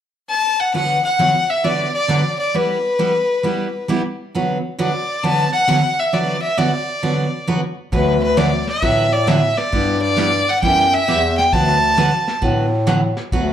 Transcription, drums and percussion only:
7.93 brush sweep soft
7.93 kick soft
8.37 snare medium
8.37 hi-hat pedal medium
8.67 snare soft
8.82 brush sweep soft
8.82 kick soft
9.28 snare medium
9.28 hi-hat pedal medium
9.58 snare soft
9.73 brush sweep medium
9.73 kick soft
10.18 snare medium
10.18 hi-hat pedal medium
10.63 brush sweep soft
10.63 kick soft
11.08 snare medium
11.08 hi-hat pedal medium
11.39 snare soft
11.53 brush sweep soft
11.53 kick soft
11.98 snare medium
11.98 hi-hat pedal medium
12.28 snare soft
12.42 brush sweep soft
12.42 kick soft
12.87 snare medium
12.87 hi-hat pedal medium
13.17 snare soft
13.32 brush sweep medium
13.32 kick soft

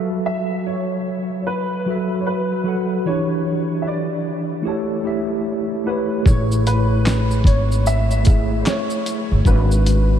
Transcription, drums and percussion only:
6.26 kick loud
6.26 shaker medium
6.52 shaker medium
6.67 closed hi-hat medium
6.67 shaker medium
7.06 snare loud
7.06 clap medium
7.06 shaker medium
7.31 shaker soft
7.44 kick loud
7.44 closed hi-hat medium
7.44 shaker soft
7.72 shaker soft
7.86 shaker medium
8.11 shaker soft
8.25 kick loud
8.25 closed hi-hat medium
8.25 shaker medium
8.66 snare loud
8.66 clap medium
8.66 shaker medium
8.90 shaker soft
9.06 closed hi-hat medium
9.06 shaker soft
9.45 kick loud
9.45 shaker medium
9.71 shaker medium
9.86 closed hi-hat medium
9.86 shaker medium

